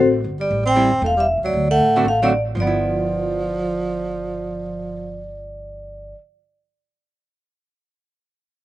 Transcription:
Already playing: A1
0.24 G1
0.40 G3 D5
0.51 A1
0.66 C4 G5
0.76 G3 C4 E4
0.91 G1
1.02 E1 A3
1.06 F5
1.17 G3 E5
1.38 C2
1.44 D#2 F#3 D5
1.53 D2
1.71 A3 F#5
1.79 A2
1.96 D3 A3 C4 F#4
2.05 A1 A3 F5
2.22 D3 F#3 A3 C4 F#4 D5
2.55 G1 F3
2.60 F3 B3 D5
2.67 E4

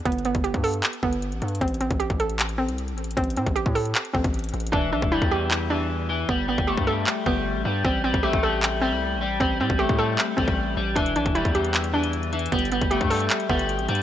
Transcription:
0.05 G1 B3, kick, closed hi-hat
0.12 closed hi-hat
0.18 closed hi-hat
0.25 B3, closed hi-hat
0.35 G1, kick, closed hi-hat
0.44 G4, closed hi-hat
0.54 G2, kick, closed hi-hat
0.64 A4, open hi-hat
0.74 closed hi-hat
0.83 clap, closed hi-hat
0.93 closed hi-hat
1.03 G1 B3, kick
1.13 closed hi-hat
1.22 closed hi-hat
1.32 A1, closed hi-hat
1.42 G2, closed hi-hat
1.48 closed hi-hat
1.55 closed hi-hat
1.61 A1 C4, kick, closed hi-hat
1.68 closed hi-hat
1.74 closed hi-hat
1.81 C4, closed hi-hat
1.91 A1, kick, closed hi-hat
2.00 G4, closed hi-hat
2.10 A1, kick, closed hi-hat
2.20 A4, closed hi-hat
2.30 closed hi-hat
2.39 clap, closed hi-hat
2.49 closed hi-hat
2.58 C4
2.69 C2, closed hi-hat
2.78 closed hi-hat
2.88 closed hi-hat
2.93 A1
2.98 closed hi-hat
3.04 closed hi-hat
3.11 closed hi-hat
3.17 A1 C4, kick, closed hi-hat
3.24 closed hi-hat
3.30 closed hi-hat
3.37 A2 C4, closed hi-hat
3.46 A1, kick, closed hi-hat
3.56 G4, closed hi-hat
3.66 A2, kick
3.75 A4, open hi-hat
3.85 closed hi-hat
3.95 clap, closed hi-hat
4.05 closed hi-hat
4.13 A1 C4, kick
4.24 A1, kick, closed hi-hat
4.34 closed hi-hat
4.39 closed hi-hat
4.44 closed hi-hat
4.49 closed hi-hat
4.54 A1, closed hi-hat
4.60 closed hi-hat
4.67 closed hi-hat
4.72 E1 E3 D4, kick
4.92 B1 E3 D4
5.02 E1, kick
5.12 G3 E4
5.22 E2, kick
5.31 E3 G4
5.51 clap
5.70 E3 D4
6.09 E3
6.29 G1 G3 B3, kick
6.48 G3 B3
6.58 G1, kick
6.67 A3 G4
6.77 G2, kick
6.87 G3 A4
7.07 clap
7.26 G1 G3 B3, kick
7.55 A1
7.65 G2 G3
7.84 A1 G3 C4, kick
8.04 G3 C4
8.14 A1, kick
8.23 A3 G4
8.33 A1, kick
8.43 G3 A4
8.63 clap
8.81 G3 C4
8.92 C2
9.16 A1
9.21 G3
9.40 A1 G3 C4, kick
9.60 A2 G3 C4
9.70 A1, kick
9.79 A3 G4
9.89 A2, kick
9.98 G3 A4
10.18 clap
10.37 A1 G3 C4, kick
10.48 A1, kick
10.77 A1 G3
10.96 E1 E3 D4, kick, closed hi-hat
11.06 closed hi-hat
11.16 B1 E3 D4, closed hi-hat
11.26 E1, kick, closed hi-hat
11.35 G3 E4, closed hi-hat
11.45 E2, kick, closed hi-hat
11.55 E3 G4, closed hi-hat
11.65 closed hi-hat
11.74 clap, closed hi-hat
11.84 closed hi-hat
11.94 E3 D4
12.04 closed hi-hat
12.13 closed hi-hat
12.23 closed hi-hat
12.33 E3, closed hi-hat
12.39 closed hi-hat
12.46 closed hi-hat
12.52 G1 G3 B3, kick, closed hi-hat
12.59 closed hi-hat
12.65 closed hi-hat
12.72 G3 B3, closed hi-hat
12.82 G1, kick, closed hi-hat
12.91 A3 G4, closed hi-hat
13.01 G2, kick, closed hi-hat
13.10 G3 A4, open hi-hat
13.20 closed hi-hat
13.30 clap, closed hi-hat
13.40 closed hi-hat
13.49 G1 G3 B3, kick
13.59 closed hi-hat
13.69 closed hi-hat
13.79 A1, closed hi-hat
13.88 G2 G3, closed hi-hat
13.95 closed hi-hat

